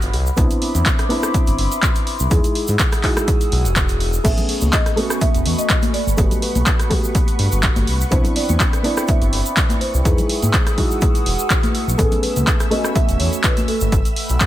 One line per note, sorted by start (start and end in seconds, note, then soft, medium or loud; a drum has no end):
0.00 0.10 G1 loud
0.00 0.11 A3 medium
0.00 0.12 B3 medium
0.00 0.12 F#4 medium
0.00 0.13 G4 medium
0.00 0.11 F#5 medium
0.00 closed hi-hat medium
0.00 shaker soft
0.13 0.30 C2 medium
0.13 2.29 E5 medium
0.13 2.29 B5 medium
0.13 2.29 C6 medium
0.13 2.29 D6 loud
0.13 open hi-hat loud
0.26 shaker medium
0.36 0.46 C2 loud
0.36 1.07 B3 medium
0.36 1.07 C4 medium
0.36 1.08 D4 medium
0.36 1.08 E4 medium
0.36 kick loud
0.36 closed hi-hat medium
0.36 shaker medium
0.51 closed hi-hat medium
0.51 shaker soft
0.62 open hi-hat loud
0.75 0.82 E2 medium
0.75 closed hi-hat soft
0.75 shaker medium
0.86 kick loud
0.86 clap loud
0.86 closed hi-hat medium
0.86 shaker medium
0.99 cross-stick medium
0.99 closed hi-hat medium
0.99 shaker soft
1.09 2.28 B3 medium
1.09 2.28 C4 medium
1.09 2.29 D4 medium
1.09 2.29 E4 medium
1.09 open hi-hat loud
1.23 cross-stick medium
1.23 shaker medium
1.34 kick loud
1.34 closed hi-hat medium
1.34 shaker medium
1.47 1.55 G1 medium
1.47 closed hi-hat medium
1.47 shaker soft
1.58 1.67 G1 loud
1.58 open hi-hat loud
1.72 closed hi-hat soft
1.72 shaker medium
1.83 kick loud
1.83 clap loud
1.83 closed hi-hat medium
1.83 shaker medium
1.95 closed hi-hat medium
1.95 shaker soft
2.07 open hi-hat loud
2.19 2.27 C2 medium
2.19 shaker medium
2.30 2.40 E2 loud
2.30 3.00 G#3 medium
2.30 3.01 D#4 medium
2.30 3.01 E4 medium
2.30 4.23 G#4 medium
2.30 3.01 G#4 medium
2.30 4.23 F#5 medium
2.30 4.23 D#6 medium
2.30 4.23 E6 medium
2.30 kick loud
2.30 closed hi-hat medium
2.30 shaker medium
2.44 closed hi-hat medium
2.44 shaker soft
2.55 open hi-hat loud
2.67 2.76 G#2 medium
2.67 closed hi-hat soft
2.67 shaker medium
2.79 kick loud
2.79 clap loud
2.79 closed hi-hat medium
2.79 shaker medium
2.92 cross-stick medium
2.92 closed hi-hat medium
2.92 shaker soft
3.03 4.21 G#3 medium
3.03 4.22 D#4 medium
3.03 4.22 E4 medium
3.03 4.23 F#4 medium
3.03 kick medium
3.03 clap medium
3.03 open hi-hat loud
3.17 cross-stick medium
3.17 closed hi-hat soft
3.17 shaker medium
3.28 kick loud
3.28 closed hi-hat medium
3.28 shaker medium
3.41 closed hi-hat medium
3.41 shaker soft
3.52 3.67 B1 loud
3.52 open hi-hat loud
3.65 4.19 E1 medium
3.65 closed hi-hat soft
3.65 shaker medium
3.76 kick loud
3.76 clap loud
3.76 closed hi-hat medium
3.76 shaker medium
3.89 closed hi-hat medium
3.89 shaker soft
4.00 open hi-hat loud
4.13 shaker medium
4.24 4.33 A1 loud
4.24 4.94 A3 medium
4.24 7.84 A3 medium
4.24 4.94 B3 medium
4.24 4.95 C#4 medium
4.24 4.95 G#4 medium
4.24 12.00 B4 medium
4.24 4.74 E5 loud
4.24 5.92 G#5 medium
4.24 7.84 B5 medium
4.24 12.00 C#6 medium
4.24 5.92 C#6 medium
4.24 kick loud
4.24 closed hi-hat medium
4.24 crash medium
4.24 shaker medium
4.37 closed hi-hat medium
4.37 low conga medium
4.37 shaker soft
4.49 open hi-hat loud
4.61 4.69 C#2 loud
4.61 closed hi-hat soft
4.61 high conga medium
4.61 shaker medium
4.73 5.23 D#5 loud
4.73 kick loud
4.73 clap loud
4.73 closed hi-hat medium
4.73 shaker medium
4.86 cross-stick medium
4.86 closed hi-hat medium
4.86 shaker soft
4.96 5.92 A3 medium
4.96 5.92 B3 medium
4.96 5.93 C#4 medium
4.96 5.93 F#4 medium
4.96 open hi-hat loud
5.10 cross-stick medium
5.10 shaker medium
5.21 5.60 E5 loud
5.21 kick loud
5.21 closed hi-hat medium
5.21 high conga medium
5.21 shaker medium
5.34 5.42 E1 medium
5.34 closed hi-hat medium
5.34 shaker soft
5.46 5.54 E2 loud
5.46 open hi-hat loud
5.58 5.95 D#5 loud
5.58 closed hi-hat soft
5.58 shaker medium
5.70 kick loud
5.70 clap loud
5.70 closed hi-hat medium
5.70 shaker medium
5.82 closed hi-hat medium
5.82 high conga medium
5.82 shaker soft
5.93 6.44 D5 loud
5.93 7.86 F#5 medium
5.93 open hi-hat loud
6.07 6.14 G1 medium
6.07 shaker medium
6.17 6.27 G1 loud
6.17 6.87 A3 medium
6.17 6.88 B3 medium
6.17 6.88 F#4 medium
6.17 6.89 G4 medium
6.17 kick loud
6.17 closed hi-hat medium
6.17 shaker medium
6.31 closed hi-hat medium
6.31 low conga medium
6.31 shaker soft
6.42 7.83 B4 medium
6.42 open hi-hat loud
6.55 6.63 B1 medium
6.55 closed hi-hat soft
6.55 high conga medium
6.55 shaker medium
6.66 kick loud
6.66 clap loud
6.66 closed hi-hat medium
6.66 shaker medium
6.79 cross-stick medium
6.79 closed hi-hat medium
6.79 shaker soft
6.90 7.86 A3 medium
6.90 7.86 B3 medium
6.90 7.86 F#4 medium
6.90 7.87 G4 medium
6.90 kick medium
6.90 open hi-hat loud
6.90 low conga medium
7.04 shaker medium
7.15 kick loud
7.15 closed hi-hat medium
7.15 high conga medium
7.15 shaker medium
7.28 closed hi-hat medium
7.28 shaker soft
7.39 7.48 G2 loud
7.39 open hi-hat loud
7.52 7.67 G1 loud
7.52 closed hi-hat soft
7.52 shaker medium
7.63 kick loud
7.63 clap loud
7.63 closed hi-hat medium
7.63 shaker medium
7.76 7.84 G1 loud
7.76 closed hi-hat medium
7.76 high conga medium
7.76 shaker soft
7.87 8.04 C2 medium
7.87 10.03 D5 loud
7.87 10.03 E5 medium
7.87 10.03 G5 medium
7.87 10.03 B5 medium
7.87 open hi-hat loud
8.01 shaker medium
8.11 8.20 C2 loud
8.11 8.81 B3 medium
8.11 8.81 C4 medium
8.11 8.82 D4 medium
8.11 8.82 E4 loud
8.11 8.37 C5 medium
8.11 kick loud
8.11 closed hi-hat medium
8.11 shaker medium
8.24 closed hi-hat soft
8.24 low conga medium
8.24 shaker soft
8.36 8.83 D5 loud
8.36 open hi-hat loud
8.49 8.56 E2 loud
8.49 closed hi-hat soft
8.49 high conga medium
8.49 shaker medium
8.60 kick loud
8.60 clap loud
8.60 closed hi-hat medium
8.60 shaker medium
8.73 cross-stick medium
8.73 closed hi-hat medium
8.73 shaker soft
8.83 10.02 B3 medium
8.83 10.02 C4 medium
8.83 10.03 D4 medium
8.83 10.03 E4 medium
8.83 9.07 D5 loud
8.83 open hi-hat loud
8.97 cross-stick medium
8.97 shaker medium
9.08 9.83 E5 loud
9.08 kick loud
9.08 closed hi-hat medium
9.08 high conga medium
9.08 shaker medium
9.21 9.29 G1 medium
9.21 closed hi-hat medium
9.21 shaker soft
9.33 9.41 G1 loud
9.33 open hi-hat loud
9.46 closed hi-hat soft
9.46 shaker medium
9.57 kick loud
9.57 clap loud
9.57 closed hi-hat medium
9.57 shaker medium
9.69 closed hi-hat medium
9.69 high conga medium
9.69 shaker soft
9.81 10.03 C5 loud
9.81 open hi-hat loud
9.94 10.01 C2 medium
9.94 shaker medium
10.04 10.14 E2 loud
10.04 10.75 G#3 medium
10.04 10.75 D#4 medium
10.04 10.75 E4 medium
10.04 11.97 G#4 medium
10.04 10.76 G#4 medium
10.04 11.71 B4 medium
10.04 11.97 F#5 medium
10.04 11.97 D#6 medium
10.04 11.97 E6 medium
10.04 kick loud
10.04 closed hi-hat medium
10.04 shaker medium
10.18 closed hi-hat soft
10.18 low conga medium
10.18 shaker soft
10.29 open hi-hat loud
10.42 10.50 G#2 medium
10.42 closed hi-hat soft
10.42 high conga medium
10.42 shaker medium
10.54 kick loud
10.54 clap loud
10.54 closed hi-hat medium
10.54 shaker medium
10.67 cross-stick medium
10.67 closed hi-hat medium
10.67 shaker soft
10.77 11.96 G#3 medium
10.77 11.96 D#4 medium
10.77 11.96 E4 medium
10.77 11.97 F#4 medium
10.77 kick medium
10.77 open hi-hat loud
10.77 low conga medium
10.91 shaker medium
11.01 kick loud
11.01 closed hi-hat medium
11.01 high conga medium
11.01 shaker medium
11.15 closed hi-hat medium
11.15 shaker soft
11.26 11.35 E1 medium
11.26 open hi-hat loud
11.39 closed hi-hat soft
11.39 shaker medium
11.50 kick loud
11.50 clap loud
11.50 closed hi-hat medium
11.50 shaker medium
11.63 closed hi-hat soft
11.63 high conga loud
11.63 shaker soft
11.75 open hi-hat loud
11.88 11.95 B1 medium
11.88 shaker medium
11.98 12.07 A1 loud
11.98 12.68 A3 medium
11.98 14.46 A3 medium
11.98 12.69 B3 medium
11.98 12.69 C#4 medium
11.98 12.69 G#4 medium
11.98 12.24 A4 medium
11.98 14.46 E5 medium
11.98 13.66 G#5 medium
11.98 13.66 B5 medium
11.98 13.66 C#6 medium
11.98 14.46 E6 medium
11.98 kick loud
11.98 closed hi-hat medium
11.98 shaker medium
12.12 closed hi-hat soft
12.12 low conga medium
12.12 shaker soft
12.23 12.68 B4 loud
12.23 open hi-hat loud
12.36 12.43 C#2 medium
12.36 closed hi-hat soft
12.36 high conga medium
12.36 shaker medium
12.47 kick loud
12.47 clap loud
12.47 closed hi-hat medium
12.47 shaker medium
12.60 cross-stick medium
12.60 closed hi-hat medium
12.60 shaker soft
12.70 13.66 A3 medium
12.70 13.67 B3 medium
12.70 13.67 C#4 medium
12.70 13.67 F#4 loud
12.70 12.96 D#5 loud
12.70 open hi-hat loud
12.84 cross-stick medium
12.84 shaker medium
12.95 13.20 E5 loud
12.95 kick loud
12.95 closed hi-hat medium
12.95 high conga medium
12.95 shaker medium
13.09 13.16 E1 medium
13.09 closed hi-hat medium
13.09 shaker soft
13.19 13.28 E2 loud
13.19 13.42 C#5 medium
13.19 open hi-hat loud
13.33 closed hi-hat soft
13.33 shaker medium
13.43 13.54 B4 loud
13.43 kick loud
13.43 clap loud
13.43 closed hi-hat medium
13.43 shaker medium
13.57 closed hi-hat medium
13.57 high conga loud
13.57 shaker soft
13.68 14.46 A4 medium
13.68 14.46 F#5 medium
13.68 14.46 G5 medium
13.68 14.46 B5 loud
13.68 open hi-hat loud
13.81 13.89 G1 medium
13.81 shaker medium
13.92 14.01 G1 loud
13.92 kick loud
13.92 closed hi-hat medium
13.92 shaker medium
14.05 closed hi-hat medium
14.05 shaker soft
14.16 open hi-hat loud
14.29 14.37 B1 medium
14.29 closed hi-hat soft
14.29 shaker medium
14.40 kick loud
14.40 clap loud
14.40 closed hi-hat medium
14.40 shaker medium